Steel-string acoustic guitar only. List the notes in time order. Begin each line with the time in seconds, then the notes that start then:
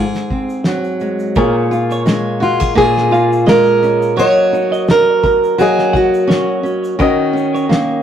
Already playing: G#4
2.43 F4
2.78 G#4
3.49 A#4
4.20 C#5
4.91 A#4
5.61 G#4
5.97 F#4